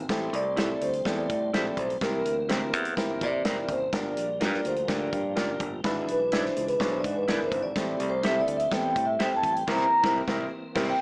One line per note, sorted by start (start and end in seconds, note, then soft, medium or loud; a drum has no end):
0.00 3.89 C4 medium
0.09 0.30 A1 loud
0.09 1.99 G3 medium
0.09 1.99 A3 medium
0.09 0.41 C4 medium
0.09 0.41 E4 medium
0.09 0.41 G4 medium
0.09 0.41 A4 medium
0.09 kick medium
0.09 snare loud
0.09 closed hi-hat medium
0.33 0.74 C2 loud
0.33 0.84 D5 loud
0.33 closed hi-hat medium
0.57 0.89 C4 medium
0.57 0.68 E4 medium
0.57 0.89 E4 medium
0.57 0.69 G4 medium
0.57 0.89 G4 medium
0.57 0.89 A4 medium
0.57 0.69 C5 medium
0.57 snare loud
0.57 closed hi-hat medium
0.81 1.02 D2 loud
0.81 1.07 C5 medium
0.81 closed hi-hat medium
0.93 closed hi-hat soft
1.05 1.26 E2 loud
1.05 1.37 C4 medium
1.05 1.37 E4 medium
1.05 1.37 G4 medium
1.05 1.38 A4 medium
1.05 1.80 D5 loud
1.05 kick medium
1.05 snare loud
1.05 closed hi-hat medium
1.30 1.50 A2 medium
1.30 kick loud
1.30 closed hi-hat medium
1.53 1.74 A#1 medium
1.53 1.85 C4 medium
1.53 1.65 E4 medium
1.53 1.85 E4 medium
1.53 1.85 G4 medium
1.53 1.65 G4 medium
1.53 1.85 A4 medium
1.53 1.65 C5 medium
1.53 snare loud
1.53 closed hi-hat medium
1.77 1.98 B1 medium
1.77 1.89 C5 medium
1.77 kick medium
1.77 closed hi-hat medium
1.90 closed hi-hat soft
2.01 2.22 C2 loud
2.01 3.92 E3 medium
2.01 5.81 A#3 medium
2.01 2.33 C4 medium
2.01 2.33 E4 medium
2.01 2.33 G4 medium
2.01 2.33 A#4 medium
2.01 2.70 A#4 medium
2.01 kick loud
2.01 snare loud
2.01 closed hi-hat medium
2.25 2.73 D2 medium
2.25 closed hi-hat medium
2.49 2.81 C4 medium
2.49 2.60 E4 medium
2.49 2.81 E4 medium
2.49 2.81 G4 medium
2.49 2.61 A#4 medium
2.49 2.81 A#4 medium
2.49 2.61 C5 medium
2.49 snare loud
2.49 closed hi-hat medium
2.73 2.94 E2 medium
2.73 closed hi-hat medium
2.85 closed hi-hat soft
2.97 3.23 G1 medium
2.97 3.28 C4 medium
2.97 3.29 E4 medium
2.97 3.29 G4 medium
2.97 3.29 A#4 medium
2.97 kick medium
2.97 snare medium
2.97 closed hi-hat medium
3.21 3.42 C3 medium
3.21 3.72 D5 loud
3.21 kick loud
3.21 closed hi-hat medium
3.44 3.65 F1 medium
3.44 3.76 C4 medium
3.44 3.56 E4 medium
3.44 3.77 E4 medium
3.44 3.77 G4 medium
3.44 3.77 A#4 medium
3.44 3.57 A#4 medium
3.44 3.57 C5 medium
3.44 snare loud
3.44 closed hi-hat medium
3.69 3.90 F#1 medium
3.69 3.95 C5 medium
3.69 kick medium
3.69 closed hi-hat medium
3.93 4.14 G1 medium
3.93 5.83 F3 medium
3.93 5.83 G3 medium
3.93 4.24 D4 medium
3.93 4.24 F4 medium
3.93 4.24 G4 medium
3.93 4.24 A#4 medium
3.93 4.63 D5 loud
3.93 kick loud
3.93 snare loud
3.93 closed hi-hat medium
4.17 4.42 A#1 medium
4.17 closed hi-hat medium
4.40 4.61 G2 medium
4.40 4.72 D4 medium
4.40 4.72 F4 medium
4.40 4.52 F4 medium
4.40 4.72 G4 medium
4.40 4.72 A#4 medium
4.40 4.52 A#4 medium
4.40 4.53 D5 medium
4.40 snare loud
4.40 closed hi-hat medium
4.54 snare soft
4.65 4.85 D2 medium
4.65 4.91 C5 medium
4.65 closed hi-hat medium
4.76 closed hi-hat soft
4.88 5.09 D2 loud
4.88 5.20 D4 medium
4.88 5.20 F4 medium
4.88 5.20 G4 medium
4.88 5.20 A#4 medium
4.88 5.57 D5 medium
4.88 kick medium
4.88 snare loud
4.88 closed hi-hat medium
5.13 5.34 G2 loud
5.13 kick loud
5.13 closed hi-hat medium
5.35 5.57 F#1 medium
5.35 5.67 D4 medium
5.35 5.67 F4 medium
5.35 5.48 F4 medium
5.35 5.67 G4 medium
5.35 5.68 A#4 medium
5.35 5.48 A#4 medium
5.35 5.49 D5 medium
5.35 snare loud
5.35 closed hi-hat medium
5.60 5.81 G1 medium
5.60 kick loud
5.60 closed hi-hat medium
5.84 6.05 G#1 loud
5.84 7.74 E3 medium
5.84 7.74 G#3 medium
5.84 6.16 D4 medium
5.84 7.74 D4 medium
5.84 6.16 E4 medium
5.84 6.16 G#4 medium
5.84 6.16 B4 medium
5.84 kick loud
5.84 snare loud
5.84 closed hi-hat medium
6.08 6.49 B1 medium
6.08 6.35 B4 medium
6.08 closed hi-hat medium
6.32 6.64 D4 medium
6.32 6.43 E4 medium
6.32 6.64 E4 medium
6.32 6.64 G#4 medium
6.32 6.44 G#4 medium
6.32 6.64 C5 medium
6.32 6.64 D5 medium
6.32 6.44 D5 medium
6.32 snare loud
6.32 closed hi-hat medium
6.46 snare soft
6.56 6.77 C#2 medium
6.56 closed hi-hat medium
6.68 6.83 B4 medium
6.68 closed hi-hat soft
6.80 7.01 B1 loud
6.80 7.12 D4 medium
6.80 7.12 E4 medium
6.80 7.12 G#4 medium
6.80 7.12 B4 medium
6.80 6.90 C5 medium
6.80 kick medium
6.80 snare loud
6.80 closed hi-hat medium
6.99 7.13 D5 medium
7.04 7.25 G#2 medium
7.04 kick loud
7.04 closed hi-hat medium
7.16 7.31 B4 medium
7.28 7.49 G1 medium
7.28 7.60 D4 medium
7.28 7.39 E4 medium
7.28 7.60 E4 medium
7.28 7.39 G#4 medium
7.28 7.60 G#4 medium
7.28 7.46 A#4 medium
7.28 7.60 B4 medium
7.28 7.40 D5 loud
7.28 snare loud
7.28 closed hi-hat medium
7.46 7.60 C5 medium
7.52 7.73 G#1 medium
7.52 kick loud
7.52 closed hi-hat medium
7.63 8.11 D5 medium
7.75 7.97 A1 loud
7.75 9.66 G3 medium
7.75 9.65 A3 medium
7.75 11.02 C4 medium
7.75 8.08 C4 medium
7.75 8.08 E4 medium
7.75 8.08 G4 medium
7.75 8.08 A4 medium
7.75 kick loud
7.75 snare loud
7.75 closed hi-hat medium
8.00 8.41 C2 medium
8.00 closed hi-hat medium
8.10 8.24 C5 medium
8.23 8.56 C4 medium
8.23 8.35 E4 medium
8.23 8.56 E4 medium
8.23 8.35 G4 medium
8.23 8.56 G4 medium
8.23 8.56 A4 medium
8.23 8.36 C5 medium
8.23 8.40 E5 loud
8.23 snare loud
8.23 closed hi-hat medium
8.40 8.57 D5 medium
8.47 8.68 D2 medium
8.47 closed hi-hat medium
8.57 8.73 E5 medium
8.57 closed hi-hat medium
8.72 8.92 E2 loud
8.72 9.04 C4 medium
8.72 9.04 E4 medium
8.72 9.04 G4 medium
8.72 9.04 A4 medium
8.72 9.05 G5 loud
8.72 kick medium
8.72 snare loud
8.72 closed hi-hat medium
8.96 9.16 A2 medium
8.96 kick loud
8.96 closed hi-hat medium
9.05 9.21 E5 medium
9.19 9.51 C4 medium
9.19 9.31 E4 medium
9.19 9.51 E4 medium
9.19 9.31 G4 medium
9.19 9.51 G4 medium
9.19 9.52 A4 medium
9.19 9.31 C5 loud
9.19 9.35 G5 loud
9.19 snare loud
9.19 closed hi-hat medium
9.32 muted fingered electric bass stroke soft
9.36 9.53 A5 loud
9.43 9.64 A1 medium
9.43 kick medium
9.43 closed hi-hat medium
9.52 9.69 G5 medium
9.52 closed hi-hat soft
9.66 9.84 C2 loud
9.66 11.02 E3 medium
9.66 11.02 A#3 medium
9.66 9.84 C4 loud
9.66 9.84 E4 loud
9.66 9.84 G4 loud
9.66 9.84 A#4 loud
9.66 9.85 A#4 loud
9.66 9.85 C5 loud
9.66 10.13 A#5 loud
9.66 kick loud
9.66 snare loud
9.66 crash medium
10.03 10.20 C2 loud
10.03 10.20 C4 loud
10.03 10.20 E4 loud
10.03 10.20 G4 medium
10.03 10.20 A#4 loud
10.03 10.21 A#4 medium
10.03 10.21 C5 loud
10.03 kick loud
10.03 snare loud
10.27 10.44 C2 loud
10.27 10.44 C4 loud
10.27 10.44 E4 loud
10.27 10.44 G4 loud
10.27 10.44 A#4 loud
10.27 10.45 C5 medium
10.27 kick loud
10.27 snare loud
10.75 10.92 C2 loud
10.75 10.91 C4 loud
10.75 10.92 E4 loud
10.75 10.92 E4 medium
10.75 10.92 G4 loud
10.75 10.92 A#4 medium
10.75 10.92 A#4 loud
10.75 10.92 C5 loud
10.75 kick loud
10.75 snare loud
10.75 crash medium
10.90 11.02 G5 medium